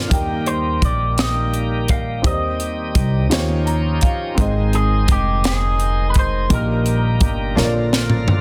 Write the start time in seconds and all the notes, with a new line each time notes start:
Already playing: A#2 D3 F3 A#3 D4 F4 A#4 D5
0.07 D#2 D#3 G3 A#3 D#4 G4, kick
0.12 A#4 G5, closed hi-hat
0.46 C5, closed hi-hat
0.82 A#1 D5, kick, closed hi-hat
1.18 D#5, snare, closed hi-hat
1.54 closed hi-hat
1.88 F5, kick, closed hi-hat
2.22 D#2 D#3 C4 D#4 G4 C5 D5, kick, closed hi-hat
2.26 D#5
2.32 D#5
2.60 closed hi-hat
2.95 C2, kick, closed hi-hat
3.29 D#2 D#3 F3 C#4 D#4 F4 G4 C5 C#5, snare, closed hi-hat
3.66 A#5, closed hi-hat
4.01 F5, kick, closed hi-hat
4.35 G#1 G#2 G#3 C4 D#4, kick, closed hi-hat
4.39 D#3 G#3 C5 D#5
4.73 G#4, closed hi-hat
5.08 F1 G4, kick, closed hi-hat
5.44 G#4, snare, closed hi-hat
5.80 closed hi-hat
6.10 B4
6.14 kick, closed hi-hat
6.19 C5
6.49 A#1 A#2 G3 A#3 D#4 G4 A#4 D#5, kick, closed hi-hat
6.54 A#4
6.86 closed hi-hat
7.20 G1, kick, closed hi-hat
7.55 A#1 A#2 D3 F3 A#3 D4 F4 A#4 C#5, snare
7.65 D5
7.93 snare
8.10 mid tom
8.28 floor tom